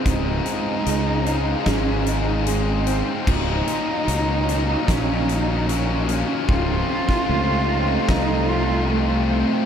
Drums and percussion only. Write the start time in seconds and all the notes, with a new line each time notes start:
0.06 kick, closed hi-hat
0.46 closed hi-hat
0.86 closed hi-hat
1.26 closed hi-hat
1.66 kick, snare, closed hi-hat
2.06 closed hi-hat
2.47 closed hi-hat
2.87 closed hi-hat
3.27 kick, crash
3.67 closed hi-hat
4.08 closed hi-hat
4.49 closed hi-hat
4.88 kick, snare, closed hi-hat
5.29 closed hi-hat
5.69 closed hi-hat
6.09 closed hi-hat
6.49 kick
7.09 kick, snare
8.09 kick, snare